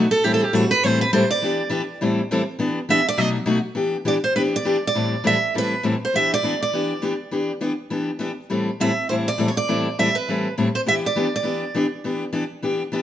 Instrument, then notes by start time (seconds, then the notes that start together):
steel-string acoustic guitar
Already playing: F#4
0.11 A4
0.24 A2 E3 G3 C4 E4 G4 A4
0.34 A4
0.44 G4
0.53 A2 E3 G3 C4 E4 F#4 A4
0.71 B4
0.84 A2 E3 G3 C4 E4 A4 C5
1.01 B4
1.13 A2 E3 G3 C4 E4 A4 C5
1.31 D5
1.42 E3 B3 D4 G4
1.70 E3 B3 D4 G4
2.01 A2 E3 G3 C4 E4 A4
2.31 A2 E3 G3 C4 E4 A4
2.59 E3 B3 D4 G4
2.89 E3 B3 D4 G4 E5
3.09 D5
3.17 B2 F#3 A3 D#4 F#4 D#5
3.46 B2 F#3 A3 D#4 F#4
3.75 E3 B3 D4 G4
4.05 E3 B3 D4 G4 D5
4.24 C5
4.36 E3 B3 D4 G4 B4
4.56 D5
4.65 E3 B3 D4 G4
4.87 D5
4.95 A2 E3 G3 C4 E4 A4
5.24 A2 E3 G3 C4 E4 A4 E5
5.54 A2 E3 G3 C4 E4 A4 B4
5.83 A2 E3 G3 C4 E4 A4
6.05 C5
6.14 E3 B3 D4 G4 E5
6.34 D5
6.43 E3 B3 D4 G4
6.62 D5
6.73 E3 B3 D4 G4
7.02 E3 B3 D4 G4
7.31 E3 B3 D4 G4
7.61 E3 B3 D4 G4
7.90 E3 B3 D4 G4
8.19 E3 B3 D4 G4
8.50 A2 E3 G3 C4 E4 A4
8.80 A2 E3 G3 C4 E4 A4 E5
9.09 A2 E3 G3 C4 E4 A4 C5
9.28 D5
9.38 A2 E3 G3 C4 E4 A4
9.48 C#5
9.57 D5
9.68 A2 E3 G3 C4 E4 A4
9.99 A2 E3 G3 C4 E4 A4 E5
10.15 B4
10.28 A2 E3 G3 C4 E4 A4
10.58 A2 E3 G3 C4 E4 A4
10.75 C5
10.86 E3 B3 D4 G4 E5
11.06 D5
11.16 E3 B3 D4 G4
11.36 D5
11.43 E3 B3 D4 G4
11.75 E3 B3 D4 G4
12.04 E3 B3 D4 G4
12.33 E3 B3 D4 G4
12.62 E3 B3 D4 G4
12.92 E3 B3 D4 G4